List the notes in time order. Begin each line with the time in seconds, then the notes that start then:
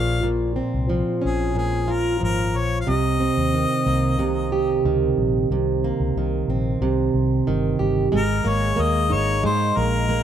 Already playing: A#1 A#2 F3 F4 F5
0.23 A#2
0.56 C4
0.74 C2
0.89 F3
1.22 A#1 C#4
1.26 G#4
1.55 A#2 G#4
1.88 F4
1.92 A#4
2.20 G#1 F3
2.24 A#4
2.55 A#1 C#5
2.81 F5
2.87 C2 C3 D#5
3.20 C4
3.37 D#2
3.54 D#3
3.86 C2 A#3
4.19 C3
4.52 G4
4.85 C#2 D#3
5.18 A#1
5.50 C2 C3
5.84 A#3
6.00 C#2
6.16 C2 D#3
6.48 A#1 C4
6.81 C2 C3
7.14 C2
7.47 G1 D#3
7.79 G1 G4
8.12 G#1 G#3 G#4
8.16 A#4
8.45 G#1 A#3
8.49 C#5
8.76 D#2 A#3
8.81 D#5
9.10 G#1 D#4 C#5
9.43 G#2 G#3 C5
9.77 A#1 A#3 A#4
10.09 A#3